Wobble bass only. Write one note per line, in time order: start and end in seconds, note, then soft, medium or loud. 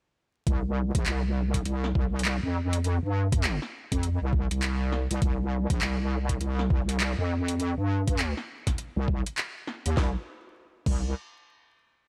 0.47 0.92 C2 medium
0.95 1.04 A#1 medium
1.06 1.64 C2 medium
1.65 1.93 C2 medium
1.95 2.40 C2 loud
2.43 3.00 F2 loud
3.03 3.59 G2 loud
3.92 4.19 F2 loud
4.21 4.48 C2 medium
4.51 5.08 C2 loud
5.11 5.20 C2 medium
5.22 5.67 C2 loud
5.70 5.79 A#1 medium
5.81 6.39 C2 medium
6.41 6.69 C2 medium
6.70 7.16 C2 loud
7.18 7.75 F2 loud
7.78 8.34 G2 loud
8.96 9.23 C2 medium
9.86 9.95 D#2 medium
9.97 10.16 C2 medium
10.86 11.14 C2 loud